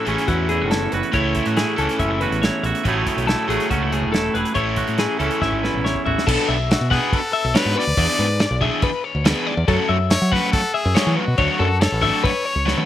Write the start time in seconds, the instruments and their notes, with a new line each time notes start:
Already playing: clean electric guitar A2 E4 F#4
0.05 fingered electric bass A1, clean electric guitar E3 C#4 G#4, overdriven electric guitar A3 C#4 E4 A4, closed hi-hat
0.18 snare, closed hi-hat
0.28 fingered electric bass E2, clean electric guitar E4 F#4, kick, closed hi-hat
0.49 clean electric guitar E2 E4 G#4, closed hi-hat
0.60 fingered electric bass F#1, clean electric guitar F#4
0.71 clean electric guitar E4 A4, snare, closed hi-hat
0.92 fingered electric bass F#1, clean electric guitar F#4 B4, closed hi-hat
1.03 closed hi-hat
1.12 fingered electric bass C#2, clean electric guitar A2 E4 C#5, overdriven electric guitar A3 C#4 E4 A4, kick, closed hi-hat
1.35 clean electric guitar E4, kick, closed hi-hat
1.46 fingered electric bass A2, clean electric guitar F#4, closed hi-hat
1.57 clean electric guitar E4 G#4, snare, closed hi-hat
1.76 fingered electric bass C#2, clean electric guitar E3 C#4 A4, overdriven electric guitar A3 C#4 E4 A4, closed hi-hat
1.89 snare, closed hi-hat
1.99 fingered electric bass F#1, clean electric guitar C#4 E5, kick, closed hi-hat
2.11 clean electric guitar E4
2.21 clean electric guitar E2 F#4 B4, closed hi-hat
2.31 fingered electric bass A1, closed hi-hat
2.42 clean electric guitar E4 C#5, snare, closed hi-hat
2.63 fingered electric bass A1, clean electric guitar F#4 E5, closed hi-hat
2.75 closed hi-hat
2.84 fingered electric bass A1, clean electric guitar A2 F#3 A3 C#5, overdriven electric guitar A3 C#4 F#4 A4, kick, closed hi-hat
2.88 clean electric guitar E4 G#4
3.07 kick, closed hi-hat
3.17 fingered electric bass B1, closed hi-hat
3.27 clean electric guitar E4 A4, snare, closed hi-hat
3.48 fingered electric bass A1, clean electric guitar F#3 A3 G#4, overdriven electric guitar A3 C#4 F#4 A4, closed hi-hat
3.60 snare, closed hi-hat
3.70 fingered electric bass C#2, clean electric guitar C#4 F#4, kick, closed hi-hat
3.83 clean electric guitar E4
3.92 clean electric guitar A2 G#4, closed hi-hat
4.02 fingered electric bass E1
4.12 clean electric guitar E4 A4, snare, closed hi-hat
4.34 fingered electric bass E1, clean electric guitar G#4 B4, closed hi-hat
4.45 closed hi-hat
4.54 fingered electric bass A1, clean electric guitar A2 E4 C#5, overdriven electric guitar A3 C#4 E4 A4, kick, closed hi-hat
4.76 clean electric guitar F#4, kick, closed hi-hat
4.87 fingered electric bass A2, closed hi-hat
4.98 clean electric guitar E4 G#4, snare, closed hi-hat
5.19 fingered electric bass C#2, clean electric guitar E3 C#4 A4, overdriven electric guitar A3 C#4 E4 A4, closed hi-hat
5.31 closed hi-hat
5.42 fingered electric bass G#1, clean electric guitar E4 E5, kick, snare
5.52 kick
5.63 clean electric guitar E2 E4 B4, snare
5.74 fingered electric bass A1, mid tom
5.84 clean electric guitar E4 C#5, snare
5.95 kick
6.06 fingered electric bass A1, clean electric guitar F#4 E5, floor tom
6.18 snare
6.26 fingered electric bass B1, overdriven electric guitar B3 D4 F#4 B4, clean electric guitar A4, kick, crash
6.48 fingered electric bass B1, clean electric guitar E5
6.70 trumpet F#4, snare, crash
6.81 fingered electric bass B2
6.91 overdriven electric guitar B3 D4 F#4 B4, trumpet G#4, clean electric guitar F#5, kick
7.13 trumpet A4, kick, crash
7.33 clean electric guitar E5
7.44 fingered electric bass B1
7.54 overdriven electric guitar B3 D4 F#4 B4, trumpet B4, clean electric guitar C#5, snare, crash
7.65 fingered electric bass G#2
7.76 clean electric guitar B4, trumpet D5
7.87 fingered electric bass D2
7.97 fingered electric bass E2, overdriven electric guitar E3 B3 D4 G#4, clean electric guitar D5, kick, crash
8.19 fingered electric bass G#2, clean electric guitar B4
8.39 clean electric guitar D5, snare, crash
8.51 fingered electric bass B1
8.61 overdriven electric guitar E3 B3 D4 G#4, clean electric guitar E5, kick
8.82 clean electric guitar B4, kick, crash
9.04 clean electric guitar C#5
9.15 fingered electric bass D2
9.25 overdriven electric guitar E3 B3 D4 G#4, clean electric guitar B4, snare, crash
9.47 clean electric guitar D5
9.57 fingered electric bass E2
9.68 fingered electric bass F#2, overdriven electric guitar F#3 A3 C#4 F#4, clean electric guitar A4, kick, crash
9.89 fingered electric bass F#2, clean electric guitar E5
10.10 trumpet C#5, snare, crash
10.22 fingered electric bass F#3
10.32 overdriven electric guitar F#3 A3 C#4 F#4, trumpet B4, clean electric guitar F#5, kick
10.53 trumpet A4, kick, crash
10.74 trumpet G#4, clean electric guitar E5
10.85 fingered electric bass F#2
10.95 overdriven electric guitar F#3 A3 C#4 F#4, clean electric guitar C#5, snare, crash
11.07 fingered electric bass E3
11.16 trumpet F#4, clean electric guitar B4
11.28 fingered electric bass B2
11.38 fingered electric bass D2, overdriven electric guitar F#3 A3 D4 F#4, clean electric guitar C#5, kick, crash
11.59 fingered electric bass F#2, clean electric guitar A4
11.80 trumpet A4, clean electric guitar C#5, snare, crash
11.92 fingered electric bass A1
12.01 overdriven electric guitar F#3 A3 D4 F#4, clean electric guitar E5, kick
12.24 clean electric guitar B4, trumpet C#5, kick, crash
12.45 clean electric guitar C#5
12.56 fingered electric bass C#2
12.66 overdriven electric guitar F#3 A3 D4 F#4, clean electric guitar B4, snare
12.78 high tom